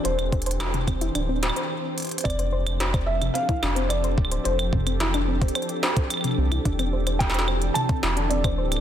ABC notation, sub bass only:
X:1
M:4/4
L:1/8
Q:1/4=109
K:Flyd
V:1 name="Sub bass" clef=bass
E,,,4 D,,, z3 | F,,,4 z F,,,2 D,,, | F,,,4 z3 C,, | E,,,4 z E,,,2 D,,, |]